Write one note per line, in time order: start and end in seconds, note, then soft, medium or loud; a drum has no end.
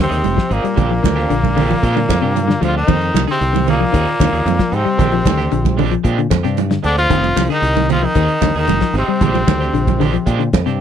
0.00 0.54 C3 medium
0.00 0.18 D3 medium
0.00 0.54 C4 loud
0.09 0.21 D#2 medium
0.09 0.26 D#4 soft
0.09 0.26 G#4 medium
0.09 snare soft
0.09 closed hi-hat medium
0.24 0.35 F1 medium
0.24 closed hi-hat medium
0.24 high conga medium
0.37 0.58 F3 medium
0.37 kick medium
0.37 snare medium
0.50 0.61 G#1 medium
0.50 2.62 A#2 medium
0.50 2.63 A#3 loud
0.50 0.66 C4 medium
0.50 0.66 D#4 medium
0.50 0.66 G#4 medium
0.50 closed hi-hat medium
0.64 0.84 G3 medium
0.64 closed hi-hat medium
0.75 0.99 A#1 medium
0.75 0.92 G#3 medium
0.75 0.92 C4 medium
0.75 0.92 D4 medium
0.75 0.92 G4 medium
0.75 kick medium
0.75 closed hi-hat medium
0.75 low conga medium
0.91 1.01 F3 medium
1.03 1.25 D2 loud
1.03 1.24 D#3 medium
1.03 kick medium
1.03 snare medium
1.03 closed hi-hat medium
1.03 high conga loud
1.15 1.32 C4 medium
1.15 1.32 D4 medium
1.15 1.32 G4 medium
1.15 snare soft
1.30 1.73 A#1 medium
1.30 1.51 D3 medium
1.30 closed hi-hat medium
1.44 kick medium
1.44 high conga medium
1.56 1.67 D3 medium
1.56 1.72 G#3 medium
1.56 1.72 C4 medium
1.56 1.72 D4 medium
1.56 1.72 G4 medium
1.56 snare soft
1.56 open hi-hat medium
1.56 low conga medium
1.70 1.90 F3 medium
1.70 low conga medium
1.82 2.04 A#2 medium
1.82 1.98 G#3 medium
1.82 1.98 C4 medium
1.82 1.99 D4 medium
1.82 1.99 G4 medium
1.82 kick medium
1.82 closed hi-hat medium
1.96 2.16 D3 medium
1.96 high conga medium
2.09 2.20 F2 medium
2.09 kick medium
2.09 snare medium
2.09 closed hi-hat medium
2.09 high conga medium
2.22 2.54 G2 medium
2.22 2.42 C3 medium
2.22 2.38 C4 soft
2.22 2.38 D4 medium
2.22 2.38 G4 medium
2.36 closed hi-hat medium
2.36 high conga medium
2.48 2.58 D3 medium
2.48 snare medium
2.61 2.83 D2 medium
2.61 2.82 F3 medium
2.61 2.74 F3 medium
2.61 2.77 G#3 medium
2.61 2.77 C4 medium
2.61 2.77 D4 medium
2.61 2.75 F4 loud
2.61 2.78 G4 medium
2.61 closed hi-hat medium
2.61 high conga medium
2.77 3.25 D#3 medium
2.77 3.25 D#4 loud
2.88 3.10 F2 loud
2.88 3.08 D#3 medium
2.88 3.04 C4 medium
2.88 3.04 D#4 medium
2.88 muted clean electric guitar stroke medium
2.88 kick loud
2.88 crash medium
2.88 low conga medium
3.02 closed hi-hat soft
3.14 3.25 C2 loud
3.14 3.25 F3 medium
3.14 snare medium
3.14 closed hi-hat medium
3.14 high conga loud
3.27 3.66 C3 medium
3.27 3.48 D3 medium
3.27 3.66 C4 loud
3.27 3.44 D#4 medium
3.27 3.43 G#4 medium
3.27 snare soft
3.27 closed hi-hat soft
3.41 3.84 C2 medium
3.41 closed hi-hat medium
3.53 3.74 D#3 medium
3.53 closed hi-hat soft
3.53 high conga medium
3.67 4.75 A#2 medium
3.67 4.77 A#3 loud
3.67 3.83 C4 medium
3.67 3.83 D#4 medium
3.67 3.84 G#4 medium
3.67 closed hi-hat medium
3.67 low conga medium
3.80 3.91 F3 medium
3.92 4.04 D#2 loud
3.92 4.14 D#3 medium
3.92 4.09 C4 medium
3.92 4.09 D#4 medium
3.92 4.09 G#4 medium
3.92 kick medium
3.92 closed hi-hat medium
4.07 closed hi-hat soft
4.20 4.31 D#2 loud
4.20 4.41 D3 medium
4.20 kick medium
4.20 snare medium
4.20 closed hi-hat medium
4.20 high conga medium
4.33 4.43 D#2 medium
4.33 4.49 D#4 medium
4.33 4.49 G#4 medium
4.33 snare soft
4.33 closed hi-hat soft
4.45 4.57 F2 medium
4.45 closed hi-hat medium
4.45 high conga medium
4.59 4.80 F3 medium
4.59 kick medium
4.59 snare medium
4.59 closed hi-hat soft
4.72 4.83 G#2 medium
4.72 5.79 C3 medium
4.72 4.88 C4 medium
4.72 5.79 C4 loud
4.72 4.88 D#4 medium
4.72 closed hi-hat medium
4.85 5.06 G3 medium
4.85 muted fingered electric bass stroke soft
4.98 5.20 A#1 loud
4.98 5.14 G#3 medium
4.98 5.14 C4 medium
4.98 5.15 D4 medium
4.98 5.15 G4 medium
4.98 kick medium
4.98 snare soft
4.98 closed hi-hat medium
4.98 low conga medium
5.12 5.23 F3 medium
5.12 closed hi-hat soft
5.25 5.47 D2 loud
5.25 5.46 D#3 medium
5.25 kick medium
5.25 snare medium
5.25 closed hi-hat medium
5.25 high conga loud
5.37 5.54 C4 medium
5.37 5.54 D4 medium
5.37 5.54 G4 medium
5.37 snare soft
5.37 closed hi-hat soft
5.52 5.95 A#1 medium
5.52 5.72 D3 medium
5.52 closed hi-hat medium
5.65 kick medium
5.65 closed hi-hat soft
5.65 high conga medium
5.77 5.89 D3 medium
5.77 5.93 G#3 medium
5.77 5.94 C4 medium
5.77 5.94 D4 medium
5.77 5.94 G4 medium
5.77 open hi-hat medium
5.77 low conga medium
5.92 6.12 F3 medium
5.92 closed hi-hat soft
6.04 6.26 A#2 medium
6.04 6.20 G#3 medium
6.04 6.20 C4 medium
6.04 6.20 D4 medium
6.04 6.20 G4 medium
6.04 kick medium
6.04 closed hi-hat medium
6.18 6.39 D3 medium
6.18 closed hi-hat soft
6.30 6.41 F2 loud
6.30 kick medium
6.30 snare medium
6.30 closed hi-hat medium
6.30 high conga loud
6.43 6.76 G2 medium
6.43 6.65 C3 medium
6.43 6.60 C4 soft
6.43 6.60 D4 medium
6.43 6.59 G4 medium
6.43 snare soft
6.43 closed hi-hat soft
6.57 closed hi-hat medium
6.57 high conga loud
6.71 6.81 D3 medium
6.71 snare medium
6.71 closed hi-hat soft
6.83 7.06 D2 loud
6.83 6.97 D3 medium
6.83 6.99 G#3 medium
6.83 6.99 C4 medium
6.83 6.99 D4 medium
6.83 6.96 D4 loud
6.83 7.00 G4 medium
6.83 closed hi-hat medium
6.97 7.46 F3 medium
6.97 7.46 F4 loud
6.97 closed hi-hat soft
7.09 7.32 F1 loud
7.09 7.31 D#3 loud
7.09 7.25 C4 medium
7.09 7.26 D#4 medium
7.09 7.26 G#4 medium
7.09 kick medium
7.09 closed hi-hat medium
7.09 low conga medium
7.24 closed hi-hat soft
7.24 high conga medium
7.36 7.47 C2 loud
7.36 7.47 F3 medium
7.36 snare medium
7.36 closed hi-hat medium
7.36 high conga loud
7.49 7.70 D3 medium
7.49 7.87 D#3 medium
7.49 7.66 D#4 soft
7.49 7.88 D#4 loud
7.49 7.66 G#4 medium
7.49 snare soft
7.49 closed hi-hat soft
7.62 8.05 C2 medium
7.62 closed hi-hat medium
7.75 7.97 D#3 medium
7.75 closed hi-hat soft
7.75 high conga medium
7.89 8.05 F3 medium
7.89 8.05 C4 medium
7.89 8.05 D#4 medium
7.89 8.07 F4 loud
7.89 8.06 G#4 medium
7.89 closed hi-hat medium
7.89 low conga medium
8.03 8.56 D#3 medium
8.03 8.13 F3 medium
8.03 8.57 D#4 loud
8.15 8.26 D#2 loud
8.15 8.36 D#3 medium
8.15 8.32 C4 medium
8.15 8.32 D#4 medium
8.15 8.32 G#4 medium
8.15 kick medium
8.15 closed hi-hat medium
8.29 closed hi-hat soft
8.41 8.53 D#2 loud
8.41 8.63 D3 medium
8.41 kick medium
8.41 snare medium
8.41 closed hi-hat medium
8.41 high conga loud
8.55 8.66 D#2 medium
8.55 8.93 D#3 medium
8.55 8.71 D#4 soft
8.55 8.71 G#4 medium
8.55 closed hi-hat soft
8.60 8.94 D#4 loud
8.67 8.79 F1 loud
8.67 8.78 D#3 medium
8.67 closed hi-hat medium
8.67 high conga medium
8.81 9.02 F3 medium
8.81 kick medium
8.81 snare medium
8.81 closed hi-hat soft
8.93 9.05 G#1 medium
8.93 10.50 C3 medium
8.93 9.10 C4 medium
8.93 9.10 D#4 medium
8.93 9.11 G#4 medium
8.93 snare soft
8.93 closed hi-hat medium
8.99 10.51 C4 loud
9.08 9.29 G3 medium
9.21 9.43 A#1 loud
9.21 9.37 G#3 medium
9.21 9.37 C4 medium
9.21 9.37 D4 medium
9.21 9.37 G4 medium
9.21 kick medium
9.21 snare soft
9.21 closed hi-hat medium
9.21 low conga medium
9.34 9.44 F3 medium
9.34 closed hi-hat soft
9.34 high conga medium
9.47 9.69 D2 loud
9.47 9.68 D#3 medium
9.47 kick medium
9.47 snare medium
9.47 closed hi-hat medium
9.47 high conga loud
9.61 9.77 C4 medium
9.61 9.77 D4 medium
9.61 9.76 G4 medium
9.61 snare soft
9.61 closed hi-hat soft
9.73 10.17 A#1 medium
9.73 9.94 D3 medium
9.73 closed hi-hat medium
9.87 kick medium
9.87 closed hi-hat soft
9.87 high conga medium
10.00 10.10 D3 medium
10.00 10.16 G#3 medium
10.00 10.16 C4 medium
10.00 10.16 D4 medium
10.00 10.17 G4 medium
10.00 snare soft
10.00 open hi-hat medium
10.00 low conga medium
10.13 10.34 F3 medium
10.13 closed hi-hat soft
10.26 10.48 A#2 medium
10.26 10.42 G#3 medium
10.26 10.42 C4 medium
10.26 10.43 D4 medium
10.26 10.43 G4 medium
10.26 kick medium
10.26 closed hi-hat medium
10.39 10.60 D3 medium
10.39 closed hi-hat soft
10.53 10.64 F2 loud
10.53 kick medium
10.53 snare medium
10.53 closed hi-hat medium
10.53 high conga medium
10.66 10.81 G2 medium
10.66 10.81 C3 medium
10.66 10.81 C4 medium
10.66 10.81 D4 medium
10.66 10.81 G4 medium
10.66 snare soft
10.66 closed hi-hat soft